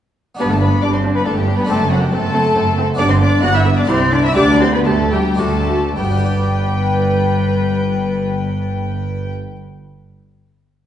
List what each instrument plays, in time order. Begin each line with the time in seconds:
0.35 harpsichord B3 D4 G4
0.39 double bass section G1, harpsichord G2, cello section G2, cello B3, viola section D4, violin section B4 B5
0.50 cello A3, violin section A4 A5
0.60 cello B3, viola section D4, violin section B4 B5
0.82 double bass section G1, harpsichord G2, cello section G2, cello D4, viola section D4, violin section D5 D6
0.93 cello C4, violin section C5 C6
1.04 viola section D4
1.14 cello B3, violin section B4 B5
1.25 double bass section G1, harpsichord G2, cello section G2, cello A3, viola section D4, violin section A4 A5
1.36 cello G3, violin section G4 G5
1.47 viola section D4
1.58 cello B3, violin section B4 B5
1.65 cello A3, harpsichord C4 D4 A4, viola section C4, violin section A5
1.69 double bass section F#1, harpsichord F#2, cello section F#2, violin section A4
1.90 cello F#3, viola section C4, violin section F#4 F#5
2.01 cello G3, violin section G4 G5
2.11 double bass section F#1, harpsichord F#2, cello section F#2, cello A3, viola section C4, violin section A4 A5
2.34 viola section C4
2.55 double bass section F#1, harpsichord F#2, cello section F#2, viola section C4
2.77 viola section C4
2.94 harpsichord B3 D4 G4, violin section D6
2.98 double bass section G1, harpsichord G2, cello section G2, viola section B3, cello D4, violin section D5
3.09 cello C4, violin section C5 C6
3.20 viola section B3, cello D4, violin section D5 D6
3.42 double bass section G1, cello section G2, harpsichord G2, viola section B3, cello F#4, violin section F#5 F#6
3.55 cello E4, violin section E5 E6
3.65 viola section B3
3.77 cello D4, violin section D5 D6
3.84 harpsichord C4 E4 G4, viola section E4, violin section C6
3.88 cello section C2, harpsichord C2, double bass section C2, cello C4, violin section C5
4.11 cello D4, viola section E4, violin section D5 D6
4.24 cello E4, violin section E5 E6
4.31 harpsichord B3 D4 G4, viola section G4, violin section D6
4.36 cello section D2, harpsichord D2, double bass section D2, cello D4, violin section D5
4.60 cello C4, viola section G4, violin section C5 C6
4.73 cello B3, violin section B4 B5
4.85 cello section D2, harpsichord D2, double bass section D2, cello A3, viola section G4, violin section A4 A5
5.11 cello G3, viola section G4, violin section G4 G5
5.34 harpsichord C4 D4 F#4, violin section A5
5.39 harpsichord D2, double bass section D2, cello section D2, cello A3, viola section F#4, violin section A4
5.67 viola section F#4
5.95 double bass section G1, cello section G2, cello G3, harpsichord G3, viola section B4, violin section G5
6.03 harpsichord B3
6.10 harpsichord D4
6.17 harpsichord G4
6.24 harpsichord D5